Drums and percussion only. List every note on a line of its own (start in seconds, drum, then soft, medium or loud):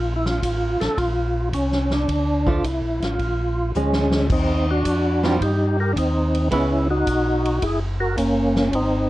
0.25 snare soft
0.42 kick soft
0.42 hi-hat pedal medium
0.42 ride medium
0.81 snare soft
0.81 ride soft
0.98 kick soft
0.98 ride soft
1.53 kick soft
1.53 hi-hat pedal medium
1.53 ride medium
1.72 snare soft
1.91 snare soft
2.08 kick soft
2.08 ride medium
2.47 kick soft
2.64 kick soft
2.64 hi-hat pedal soft
2.64 ride medium
3.02 snare soft
3.02 ride soft
3.19 kick soft
3.19 ride soft
3.75 hi-hat pedal soft
3.93 snare soft
4.11 snare medium
4.30 kick medium
4.30 crash medium
4.85 kick soft
4.85 hi-hat pedal medium
4.85 ride medium
5.24 snare medium
5.41 kick soft
5.41 ride medium
5.96 kick soft
5.96 hi-hat pedal soft
5.96 ride medium
6.35 ride soft
6.52 kick soft
6.52 ride medium
7.07 kick soft
7.07 hi-hat pedal medium
7.07 ride medium
7.45 ride soft
7.62 kick soft
7.62 ride medium
8.17 kick soft
8.17 hi-hat pedal medium
8.17 ride medium
8.56 snare medium
8.73 kick soft
8.73 ride medium